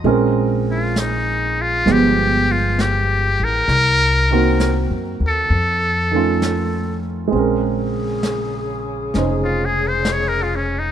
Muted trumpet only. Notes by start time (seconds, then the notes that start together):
0.71 F4
0.99 D#4
1.61 F4
1.92 G4
2.52 F4
2.81 G4
3.44 A#4
5.26 A4
9.44 F4
9.65 G#4
9.88 C5
10.13 C#5
10.28 A#4
10.43 F4
10.56 C#4
10.79 D#4